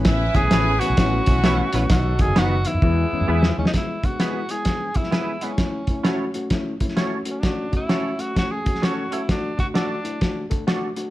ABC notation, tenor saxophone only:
X:1
M:4/4
L:1/16
Q:"Swing" 1/4=130
K:E
V:1 name="Tenor saxophone"
E2 G4 F8- F2 | F2 G2 F2 E8 C D | [K:Emix] E2 F4 G4 E4 C2- | C4 z8 z2 C D- |
D2 E4 F2 F G3 F2 E2 | D2 F2 D6 z6 |]